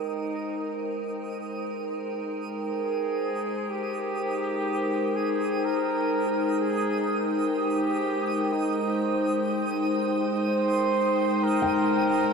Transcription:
0.00 12.33 G#3 medium
0.00 1.20 D#4 medium
0.00 12.33 D#4 medium
0.00 10.58 A#4 medium
0.00 12.33 C5 medium
0.00 12.33 G5 medium
0.00 12.33 D#6 medium
2.72 3.71 G#4 medium
3.70 5.17 G4 medium
5.15 5.66 G#4 medium
5.65 6.59 A#4 medium
6.60 7.24 G#4 medium
7.56 8.54 G4 medium
8.52 9.24 D#4 medium
10.47 11.45 C5 medium
11.43 12.33 A#4 medium
11.62 12.33 G5 soft

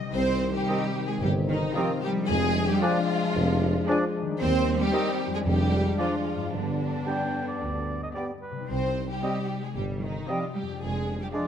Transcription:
0.00 2.21 C3 medium
0.00 2.24 G3 medium
0.00 0.11 B3 soft
0.00 0.13 D4 soft
0.00 0.13 D#5 medium
0.04 2.26 C4 soft
0.09 2.24 D#3 medium
0.09 2.28 D#4 medium
0.13 0.57 C2 medium
0.13 2.25 C4 medium
0.13 0.52 C4 medium
0.13 0.52 C5 loud
0.55 1.07 G3 medium
0.55 1.07 G4 medium
0.68 0.85 D#3 medium
0.68 0.85 C4 medium
0.68 1.08 D#4 medium
0.68 1.08 G4 medium
0.68 1.08 C5 medium
0.68 0.84 D#5 medium
0.68 0.78 G5 medium
1.08 1.14 G#3 medium
1.08 1.22 G#4 medium
1.21 1.64 G1 medium
1.21 1.30 G3 medium
1.21 1.30 G4 loud
1.48 1.57 D#3 medium
1.48 1.75 D#4 medium
1.75 1.92 D#3 medium
1.75 1.83 F3 medium
1.75 1.91 C4 medium
1.75 2.15 D#4 medium
1.75 2.02 F4 medium
1.75 2.15 G4 medium
1.75 2.15 C5 medium
1.75 1.92 D#5 medium
1.75 1.86 G5 medium
2.02 2.28 G3 medium
2.02 2.10 G4 loud
2.10 4.33 F3 medium
2.15 4.35 G#3 medium
2.20 4.38 D4 medium
2.24 4.40 G#4 medium
2.28 2.70 F1 medium
2.28 2.70 F2 medium
2.28 2.68 G#3 medium
2.28 4.36 G#3 medium
2.28 4.36 D4 medium
2.28 2.68 G#4 loud
2.69 2.82 G3 medium
2.69 2.82 G4 loud
2.81 4.14 F3 medium
2.81 2.98 F3 medium
2.81 2.98 D4 medium
2.81 3.22 D4 medium
2.81 4.13 F4 loud
2.81 3.22 G#4 medium
2.81 2.98 D5 medium
2.81 3.22 D5 medium
2.81 2.92 G#5 medium
3.35 3.77 F1 loud
3.35 3.77 F2 medium
3.88 4.05 F3 medium
3.88 4.27 D4 medium
3.88 4.05 D4 medium
3.88 4.27 G#4 medium
3.88 4.27 D5 medium
3.88 4.04 D5 medium
3.88 3.98 G#5 medium
4.22 5.38 D#3 medium
4.27 5.40 G3 medium
4.31 5.42 D#4 medium
4.36 5.45 C5 medium
4.41 4.82 D#2 medium
4.41 5.44 G3 medium
4.41 4.77 C4 loud
4.41 5.46 C4 medium
4.41 4.77 C5 loud
4.79 5.32 G3 medium
4.79 5.31 G4 loud
4.93 5.09 D#3 medium
4.93 5.32 C4 medium
4.93 5.10 C4 medium
4.93 5.32 G4 medium
4.93 5.09 D#5 medium
4.93 5.32 D#5 medium
4.93 5.03 G5 medium
5.27 6.46 F2 medium
5.32 6.48 G#3 medium
5.32 5.45 G#3 medium
5.32 5.39 G#4 medium
5.36 6.43 D4 medium
5.41 8.69 D5 medium
5.45 5.87 F1 medium
5.45 5.87 F2 medium
5.45 5.97 G3 medium
5.45 6.52 G#3 medium
5.45 6.50 D4 medium
5.45 5.98 G4 loud
5.98 6.52 F3 medium
5.98 6.15 F3 soft
5.98 6.39 D4 medium
5.98 6.16 D4 soft
5.98 6.52 F4 medium
5.98 6.38 G#4 medium
5.98 6.15 D5 medium
5.98 6.39 D5 medium
5.98 6.08 G#5 medium
6.35 8.62 G2 soft
6.39 8.55 G3 soft
6.44 8.67 D4 soft
6.49 6.95 G1 medium
6.49 6.95 G2 medium
6.49 8.15 D3 medium
6.49 8.42 G3 medium
6.49 8.41 B3 medium
6.49 8.69 B4 soft
6.53 8.15 D4 medium
7.07 7.24 G3 soft
7.07 7.47 B3 soft
7.07 7.24 B3 soft
7.07 7.47 G4 soft
7.07 7.47 D5 soft
7.07 7.16 G5 soft
7.07 7.45 G5 medium
7.48 8.01 D5 medium
7.60 8.03 D2 medium
8.03 8.09 D#5 soft
8.14 8.32 G3 soft
8.14 8.55 B3 medium
8.14 8.32 B3 soft
8.14 8.56 G4 soft
8.14 8.27 D5 medium
8.14 8.55 D5 soft
8.14 8.25 G5 soft
8.42 8.68 B4 soft
8.51 10.74 C3 soft
8.56 10.77 G3 soft
8.60 10.79 D#4 soft
8.65 9.11 C2 medium
8.65 10.81 C5 soft
8.69 9.12 C2 medium
8.69 9.06 C4 medium
8.69 9.07 C5 medium
9.09 9.62 G3 medium
9.09 9.62 G4 medium
9.23 9.39 G3 soft
9.23 9.39 C4 soft
9.23 9.63 C4 medium
9.23 9.40 D#4 soft
9.23 9.63 G4 medium
9.23 9.62 D#5 medium
9.23 9.39 D#5 soft
9.23 9.32 G5 soft
9.63 9.76 G#3 medium
9.63 9.76 G#4 medium
9.75 10.17 G1 medium
9.75 10.18 G1 medium
9.75 10.02 G3 medium
9.75 9.83 G4 medium
10.02 10.28 D#3 medium
10.02 10.28 D#4 medium
10.28 10.36 F3 medium
10.28 10.46 G3 soft
10.28 10.47 G3 soft
10.28 10.44 C4 soft
10.28 10.68 C4 medium
10.28 10.46 D#4 soft
10.28 10.55 F4 medium
10.28 10.68 G4 medium
10.28 10.44 D#5 soft
10.28 10.68 D#5 medium
10.28 10.38 G5 soft
10.54 10.63 G3 medium
10.54 10.80 G4 medium
10.62 11.47 F2 soft
10.67 11.47 G#3 soft
10.71 11.47 D4 soft
10.76 11.47 D5 soft
10.80 11.22 F1 medium
10.80 11.19 G#3 medium
10.80 11.20 G#4 medium
11.20 11.25 G3 medium
11.20 11.26 G4 medium
11.32 11.47 F3 medium
11.32 11.47 G#3 soft
11.32 11.47 D4 soft
11.32 11.47 D4 medium
11.32 11.47 F4 medium
11.32 11.47 G#4 soft
11.32 11.47 D5 soft
11.32 11.43 D5 soft
11.32 11.47 D5 soft

